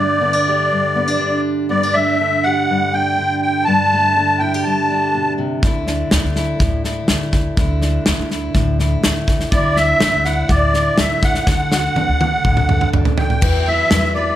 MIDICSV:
0, 0, Header, 1, 6, 480
1, 0, Start_track
1, 0, Key_signature, 1, "major"
1, 0, Tempo, 488599
1, 1670, Time_signature, 4, 2, 24, 8
1, 14105, End_track
2, 0, Start_track
2, 0, Title_t, "Accordion"
2, 0, Program_c, 0, 21
2, 0, Note_on_c, 0, 74, 68
2, 1386, Note_off_c, 0, 74, 0
2, 1667, Note_on_c, 0, 74, 77
2, 1900, Note_on_c, 0, 76, 91
2, 1917, Note_off_c, 0, 74, 0
2, 2389, Note_on_c, 0, 78, 82
2, 2402, Note_off_c, 0, 76, 0
2, 2878, Note_on_c, 0, 79, 87
2, 2887, Note_off_c, 0, 78, 0
2, 3347, Note_off_c, 0, 79, 0
2, 3361, Note_on_c, 0, 79, 72
2, 3582, Note_on_c, 0, 81, 95
2, 3583, Note_off_c, 0, 79, 0
2, 4313, Note_on_c, 0, 79, 70
2, 4332, Note_off_c, 0, 81, 0
2, 4553, Note_on_c, 0, 81, 70
2, 4563, Note_off_c, 0, 79, 0
2, 5237, Note_off_c, 0, 81, 0
2, 9341, Note_on_c, 0, 74, 81
2, 9591, Note_on_c, 0, 76, 106
2, 9595, Note_off_c, 0, 74, 0
2, 10071, Note_on_c, 0, 78, 77
2, 10086, Note_off_c, 0, 76, 0
2, 10316, Note_on_c, 0, 74, 87
2, 10318, Note_off_c, 0, 78, 0
2, 10806, Note_on_c, 0, 76, 76
2, 10807, Note_off_c, 0, 74, 0
2, 11042, Note_on_c, 0, 78, 80
2, 11045, Note_off_c, 0, 76, 0
2, 12672, Note_off_c, 0, 78, 0
2, 12951, Note_on_c, 0, 79, 66
2, 13436, Note_on_c, 0, 76, 97
2, 13441, Note_off_c, 0, 79, 0
2, 13875, Note_off_c, 0, 76, 0
2, 13897, Note_on_c, 0, 74, 66
2, 14105, Note_off_c, 0, 74, 0
2, 14105, End_track
3, 0, Start_track
3, 0, Title_t, "Twelve-string acoustic guitar"
3, 0, Program_c, 1, 25
3, 13177, Note_on_c, 1, 52, 76
3, 13186, Note_on_c, 1, 55, 63
3, 13188, Note_on_c, 1, 64, 68
3, 13189, Note_on_c, 1, 66, 72
3, 13190, Note_on_c, 1, 71, 77
3, 13410, Note_off_c, 1, 71, 0
3, 13420, Note_off_c, 1, 52, 0
3, 13421, Note_on_c, 1, 71, 51
3, 13424, Note_off_c, 1, 55, 0
3, 13425, Note_off_c, 1, 64, 0
3, 13425, Note_off_c, 1, 66, 0
3, 13438, Note_on_c, 1, 66, 46
3, 13449, Note_on_c, 1, 64, 48
3, 13662, Note_off_c, 1, 71, 0
3, 13666, Note_off_c, 1, 64, 0
3, 13667, Note_on_c, 1, 55, 56
3, 13668, Note_off_c, 1, 66, 0
3, 13678, Note_on_c, 1, 64, 50
3, 13679, Note_on_c, 1, 66, 54
3, 13691, Note_on_c, 1, 71, 61
3, 13887, Note_off_c, 1, 71, 0
3, 13899, Note_on_c, 1, 71, 39
3, 13900, Note_off_c, 1, 66, 0
3, 13904, Note_off_c, 1, 55, 0
3, 13910, Note_off_c, 1, 64, 0
3, 13912, Note_on_c, 1, 66, 45
3, 13922, Note_on_c, 1, 64, 31
3, 14105, Note_off_c, 1, 64, 0
3, 14105, Note_off_c, 1, 66, 0
3, 14105, Note_off_c, 1, 71, 0
3, 14105, End_track
4, 0, Start_track
4, 0, Title_t, "Steel-string acoustic guitar"
4, 0, Program_c, 2, 25
4, 0, Note_on_c, 2, 43, 62
4, 0, Note_on_c, 2, 50, 47
4, 0, Note_on_c, 2, 57, 52
4, 0, Note_on_c, 2, 62, 56
4, 198, Note_off_c, 2, 50, 0
4, 201, Note_off_c, 2, 62, 0
4, 205, Note_on_c, 2, 59, 46
4, 210, Note_on_c, 2, 50, 55
4, 324, Note_off_c, 2, 59, 0
4, 324, Note_on_c, 2, 62, 42
4, 470, Note_on_c, 2, 67, 62
4, 701, Note_off_c, 2, 43, 0
4, 705, Note_on_c, 2, 43, 59
4, 937, Note_off_c, 2, 62, 0
4, 942, Note_on_c, 2, 59, 50
4, 1057, Note_off_c, 2, 59, 0
4, 1057, Note_on_c, 2, 62, 47
4, 1164, Note_off_c, 2, 50, 0
4, 1176, Note_on_c, 2, 50, 55
4, 1658, Note_off_c, 2, 62, 0
4, 1662, Note_on_c, 2, 59, 60
4, 1665, Note_off_c, 2, 43, 0
4, 1669, Note_on_c, 2, 43, 69
4, 1691, Note_off_c, 2, 57, 0
4, 1800, Note_off_c, 2, 59, 0
4, 1800, Note_on_c, 2, 62, 45
4, 1926, Note_on_c, 2, 57, 59
4, 1955, Note_off_c, 2, 67, 0
4, 2146, Note_off_c, 2, 50, 0
4, 2157, Note_off_c, 2, 62, 0
4, 2164, Note_on_c, 2, 50, 51
4, 2169, Note_on_c, 2, 62, 49
4, 2418, Note_on_c, 2, 67, 64
4, 2646, Note_off_c, 2, 43, 0
4, 2650, Note_on_c, 2, 43, 56
4, 2883, Note_off_c, 2, 62, 0
4, 2887, Note_on_c, 2, 62, 48
4, 3117, Note_off_c, 2, 50, 0
4, 3129, Note_on_c, 2, 50, 53
4, 3576, Note_off_c, 2, 43, 0
4, 3580, Note_off_c, 2, 67, 0
4, 3607, Note_on_c, 2, 43, 68
4, 3614, Note_off_c, 2, 62, 0
4, 3618, Note_on_c, 2, 62, 54
4, 3637, Note_off_c, 2, 57, 0
4, 3861, Note_on_c, 2, 57, 58
4, 4084, Note_off_c, 2, 50, 0
4, 4094, Note_on_c, 2, 50, 49
4, 4103, Note_off_c, 2, 62, 0
4, 4107, Note_on_c, 2, 62, 43
4, 4334, Note_on_c, 2, 64, 64
4, 4462, Note_off_c, 2, 64, 0
4, 4462, Note_on_c, 2, 67, 43
4, 4564, Note_off_c, 2, 43, 0
4, 4577, Note_on_c, 2, 43, 54
4, 4814, Note_off_c, 2, 62, 0
4, 4818, Note_on_c, 2, 62, 53
4, 5055, Note_on_c, 2, 47, 48
4, 5282, Note_off_c, 2, 47, 0
4, 5286, Note_on_c, 2, 48, 57
4, 5500, Note_off_c, 2, 43, 0
4, 5523, Note_off_c, 2, 48, 0
4, 5528, Note_off_c, 2, 50, 0
4, 5531, Note_off_c, 2, 67, 0
4, 5539, Note_on_c, 2, 50, 64
4, 5547, Note_on_c, 2, 64, 61
4, 5576, Note_off_c, 2, 62, 0
4, 5773, Note_on_c, 2, 62, 56
4, 5999, Note_off_c, 2, 57, 0
4, 6003, Note_on_c, 2, 57, 52
4, 6013, Note_off_c, 2, 64, 0
4, 6017, Note_on_c, 2, 64, 57
4, 6242, Note_off_c, 2, 64, 0
4, 6246, Note_on_c, 2, 64, 60
4, 6474, Note_on_c, 2, 45, 56
4, 6726, Note_off_c, 2, 64, 0
4, 6730, Note_on_c, 2, 64, 57
4, 6959, Note_off_c, 2, 57, 0
4, 6963, Note_on_c, 2, 57, 59
4, 7436, Note_off_c, 2, 45, 0
4, 7446, Note_off_c, 2, 50, 0
4, 7450, Note_on_c, 2, 50, 67
4, 7452, Note_off_c, 2, 64, 0
4, 7456, Note_on_c, 2, 64, 59
4, 7486, Note_off_c, 2, 62, 0
4, 7691, Note_on_c, 2, 62, 57
4, 7915, Note_off_c, 2, 57, 0
4, 7919, Note_on_c, 2, 57, 46
4, 7920, Note_off_c, 2, 64, 0
4, 7924, Note_on_c, 2, 64, 55
4, 8162, Note_off_c, 2, 64, 0
4, 8166, Note_on_c, 2, 64, 60
4, 8396, Note_on_c, 2, 45, 61
4, 8637, Note_off_c, 2, 64, 0
4, 8641, Note_on_c, 2, 64, 56
4, 8864, Note_off_c, 2, 57, 0
4, 8868, Note_on_c, 2, 57, 51
4, 9346, Note_off_c, 2, 50, 0
4, 9350, Note_on_c, 2, 50, 65
4, 9353, Note_off_c, 2, 64, 0
4, 9354, Note_off_c, 2, 45, 0
4, 9357, Note_on_c, 2, 64, 70
4, 9387, Note_off_c, 2, 62, 0
4, 9589, Note_on_c, 2, 62, 54
4, 9817, Note_off_c, 2, 57, 0
4, 9821, Note_on_c, 2, 57, 51
4, 9826, Note_off_c, 2, 64, 0
4, 9830, Note_on_c, 2, 64, 53
4, 10071, Note_off_c, 2, 64, 0
4, 10075, Note_on_c, 2, 64, 64
4, 10299, Note_on_c, 2, 45, 59
4, 10557, Note_off_c, 2, 64, 0
4, 10561, Note_on_c, 2, 64, 62
4, 10782, Note_off_c, 2, 57, 0
4, 10794, Note_on_c, 2, 57, 50
4, 11238, Note_off_c, 2, 62, 0
4, 11242, Note_off_c, 2, 57, 0
4, 11262, Note_off_c, 2, 50, 0
4, 11263, Note_off_c, 2, 45, 0
4, 11274, Note_on_c, 2, 50, 62
4, 11280, Note_off_c, 2, 64, 0
4, 11284, Note_on_c, 2, 69, 65
4, 11523, Note_on_c, 2, 66, 53
4, 11751, Note_off_c, 2, 69, 0
4, 11756, Note_on_c, 2, 62, 55
4, 11763, Note_on_c, 2, 69, 55
4, 11989, Note_off_c, 2, 69, 0
4, 12001, Note_on_c, 2, 69, 60
4, 12236, Note_on_c, 2, 45, 58
4, 12469, Note_off_c, 2, 69, 0
4, 12480, Note_on_c, 2, 69, 54
4, 12698, Note_off_c, 2, 62, 0
4, 12710, Note_on_c, 2, 62, 52
4, 13157, Note_off_c, 2, 62, 0
4, 13160, Note_off_c, 2, 45, 0
4, 13162, Note_off_c, 2, 66, 0
4, 13162, Note_off_c, 2, 69, 0
4, 13186, Note_off_c, 2, 50, 0
4, 13193, Note_on_c, 2, 40, 64
4, 13439, Note_on_c, 2, 64, 62
4, 13678, Note_on_c, 2, 55, 46
4, 13921, Note_on_c, 2, 71, 64
4, 14105, Note_off_c, 2, 40, 0
4, 14105, Note_off_c, 2, 55, 0
4, 14105, Note_off_c, 2, 64, 0
4, 14105, Note_off_c, 2, 71, 0
4, 14105, End_track
5, 0, Start_track
5, 0, Title_t, "Upright bass"
5, 0, Program_c, 3, 32
5, 5527, Note_on_c, 3, 38, 75
5, 5908, Note_off_c, 3, 38, 0
5, 6010, Note_on_c, 3, 38, 78
5, 6102, Note_off_c, 3, 38, 0
5, 6128, Note_on_c, 3, 38, 61
5, 6413, Note_off_c, 3, 38, 0
5, 6487, Note_on_c, 3, 38, 69
5, 6868, Note_off_c, 3, 38, 0
5, 6966, Note_on_c, 3, 38, 76
5, 7347, Note_off_c, 3, 38, 0
5, 7441, Note_on_c, 3, 38, 80
5, 7824, Note_off_c, 3, 38, 0
5, 7927, Note_on_c, 3, 38, 85
5, 8019, Note_off_c, 3, 38, 0
5, 8036, Note_on_c, 3, 38, 72
5, 8324, Note_off_c, 3, 38, 0
5, 8402, Note_on_c, 3, 38, 82
5, 8783, Note_off_c, 3, 38, 0
5, 8888, Note_on_c, 3, 38, 78
5, 9266, Note_off_c, 3, 38, 0
5, 9356, Note_on_c, 3, 38, 83
5, 9738, Note_off_c, 3, 38, 0
5, 9834, Note_on_c, 3, 38, 80
5, 9929, Note_off_c, 3, 38, 0
5, 9944, Note_on_c, 3, 38, 68
5, 10235, Note_off_c, 3, 38, 0
5, 10313, Note_on_c, 3, 38, 79
5, 10696, Note_off_c, 3, 38, 0
5, 10788, Note_on_c, 3, 38, 81
5, 11172, Note_off_c, 3, 38, 0
5, 11267, Note_on_c, 3, 38, 76
5, 11651, Note_off_c, 3, 38, 0
5, 11746, Note_on_c, 3, 38, 77
5, 11842, Note_off_c, 3, 38, 0
5, 11872, Note_on_c, 3, 38, 65
5, 12158, Note_off_c, 3, 38, 0
5, 12230, Note_on_c, 3, 38, 69
5, 12611, Note_off_c, 3, 38, 0
5, 12712, Note_on_c, 3, 38, 68
5, 13092, Note_off_c, 3, 38, 0
5, 13184, Note_on_c, 3, 40, 78
5, 13567, Note_off_c, 3, 40, 0
5, 13664, Note_on_c, 3, 40, 81
5, 14046, Note_off_c, 3, 40, 0
5, 14105, End_track
6, 0, Start_track
6, 0, Title_t, "Drums"
6, 5529, Note_on_c, 9, 38, 30
6, 5530, Note_on_c, 9, 36, 93
6, 5627, Note_off_c, 9, 38, 0
6, 5628, Note_off_c, 9, 36, 0
6, 5767, Note_on_c, 9, 38, 29
6, 5865, Note_off_c, 9, 38, 0
6, 6005, Note_on_c, 9, 38, 87
6, 6103, Note_off_c, 9, 38, 0
6, 6247, Note_on_c, 9, 38, 35
6, 6345, Note_off_c, 9, 38, 0
6, 6484, Note_on_c, 9, 38, 25
6, 6485, Note_on_c, 9, 36, 75
6, 6582, Note_off_c, 9, 38, 0
6, 6583, Note_off_c, 9, 36, 0
6, 6723, Note_on_c, 9, 38, 34
6, 6822, Note_off_c, 9, 38, 0
6, 6955, Note_on_c, 9, 38, 85
6, 7053, Note_off_c, 9, 38, 0
6, 7198, Note_on_c, 9, 38, 29
6, 7200, Note_on_c, 9, 36, 67
6, 7296, Note_off_c, 9, 38, 0
6, 7298, Note_off_c, 9, 36, 0
6, 7439, Note_on_c, 9, 38, 29
6, 7440, Note_on_c, 9, 36, 93
6, 7537, Note_off_c, 9, 38, 0
6, 7538, Note_off_c, 9, 36, 0
6, 7679, Note_on_c, 9, 38, 31
6, 7777, Note_off_c, 9, 38, 0
6, 7916, Note_on_c, 9, 38, 104
6, 8014, Note_off_c, 9, 38, 0
6, 8161, Note_on_c, 9, 38, 29
6, 8259, Note_off_c, 9, 38, 0
6, 8395, Note_on_c, 9, 38, 28
6, 8396, Note_on_c, 9, 36, 69
6, 8493, Note_off_c, 9, 38, 0
6, 8494, Note_off_c, 9, 36, 0
6, 8640, Note_on_c, 9, 38, 30
6, 8738, Note_off_c, 9, 38, 0
6, 8876, Note_on_c, 9, 38, 82
6, 8975, Note_off_c, 9, 38, 0
6, 9115, Note_on_c, 9, 36, 69
6, 9118, Note_on_c, 9, 38, 32
6, 9213, Note_off_c, 9, 36, 0
6, 9216, Note_off_c, 9, 38, 0
6, 9235, Note_on_c, 9, 38, 25
6, 9333, Note_off_c, 9, 38, 0
6, 9353, Note_on_c, 9, 36, 92
6, 9353, Note_on_c, 9, 38, 33
6, 9451, Note_off_c, 9, 36, 0
6, 9451, Note_off_c, 9, 38, 0
6, 9594, Note_on_c, 9, 38, 33
6, 9692, Note_off_c, 9, 38, 0
6, 9829, Note_on_c, 9, 38, 95
6, 9927, Note_off_c, 9, 38, 0
6, 10067, Note_on_c, 9, 38, 31
6, 10166, Note_off_c, 9, 38, 0
6, 10305, Note_on_c, 9, 38, 26
6, 10308, Note_on_c, 9, 36, 72
6, 10403, Note_off_c, 9, 38, 0
6, 10406, Note_off_c, 9, 36, 0
6, 10549, Note_on_c, 9, 38, 28
6, 10647, Note_off_c, 9, 38, 0
6, 10783, Note_on_c, 9, 38, 97
6, 10881, Note_off_c, 9, 38, 0
6, 11029, Note_on_c, 9, 36, 80
6, 11029, Note_on_c, 9, 38, 29
6, 11127, Note_off_c, 9, 36, 0
6, 11127, Note_off_c, 9, 38, 0
6, 11146, Note_on_c, 9, 38, 28
6, 11244, Note_off_c, 9, 38, 0
6, 11267, Note_on_c, 9, 38, 53
6, 11269, Note_on_c, 9, 36, 89
6, 11365, Note_off_c, 9, 38, 0
6, 11367, Note_off_c, 9, 36, 0
6, 11510, Note_on_c, 9, 38, 60
6, 11608, Note_off_c, 9, 38, 0
6, 11752, Note_on_c, 9, 48, 62
6, 11850, Note_off_c, 9, 48, 0
6, 11992, Note_on_c, 9, 48, 69
6, 12090, Note_off_c, 9, 48, 0
6, 12229, Note_on_c, 9, 36, 65
6, 12229, Note_on_c, 9, 47, 62
6, 12327, Note_off_c, 9, 36, 0
6, 12327, Note_off_c, 9, 47, 0
6, 12347, Note_on_c, 9, 47, 66
6, 12446, Note_off_c, 9, 47, 0
6, 12466, Note_on_c, 9, 45, 69
6, 12564, Note_off_c, 9, 45, 0
6, 12586, Note_on_c, 9, 45, 63
6, 12684, Note_off_c, 9, 45, 0
6, 12707, Note_on_c, 9, 45, 79
6, 12805, Note_off_c, 9, 45, 0
6, 12824, Note_on_c, 9, 43, 71
6, 12922, Note_off_c, 9, 43, 0
6, 12944, Note_on_c, 9, 43, 94
6, 13042, Note_off_c, 9, 43, 0
6, 13066, Note_on_c, 9, 43, 66
6, 13164, Note_off_c, 9, 43, 0
6, 13184, Note_on_c, 9, 49, 80
6, 13186, Note_on_c, 9, 36, 93
6, 13282, Note_off_c, 9, 49, 0
6, 13284, Note_off_c, 9, 36, 0
6, 13663, Note_on_c, 9, 38, 105
6, 13761, Note_off_c, 9, 38, 0
6, 14105, End_track
0, 0, End_of_file